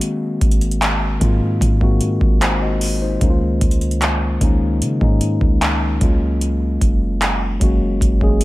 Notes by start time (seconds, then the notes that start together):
Already playing: D#3 G#3 A#3 C4 F#4
0.01 closed hi-hat
0.41 G#1, kick, closed hi-hat
0.51 closed hi-hat
0.61 closed hi-hat
0.71 closed hi-hat
0.82 clap, closed hi-hat
1.20 G#2 D#3 G#3 A#3 C4 F4, kick, closed hi-hat
1.61 G#2, kick, closed hi-hat
1.80 D#3 G#3 A#3 C4 F#4, kick
2.01 closed hi-hat
2.21 G#1, kick
2.42 D#4 C5, clap, closed hi-hat
2.62 F#4 D#5
2.81 open hi-hat
3.02 D#4 C5
3.20 C#2 D#3 G#3 A#3 C#4 D#4, kick, closed hi-hat
3.30 F4
3.61 C#2, kick, closed hi-hat
3.71 closed hi-hat
3.81 closed hi-hat
3.91 closed hi-hat
4.02 clap, closed hi-hat
4.40 C#2 D#3 G#3 A#3 C#4 D#4, kick, closed hi-hat
4.82 C#3, closed hi-hat
5.00 G#2 D#3 G#3 A#3 C#4 D#4, kick
5.21 closed hi-hat
5.41 C#2, kick
5.62 clap, closed hi-hat
6.00 C#2 F#3 G#3 A#3 C#4 F4, kick, closed hi-hat
6.41 closed hi-hat
6.81 F#1, kick, closed hi-hat
7.22 clap, closed hi-hat
7.60 F#1 F#3 G#3 A#3 C#4 F#4, kick, closed hi-hat
8.01 F#1, kick, closed hi-hat
8.20 F#3 G#3 A#3 C#4 G#4, kick
8.41 closed hi-hat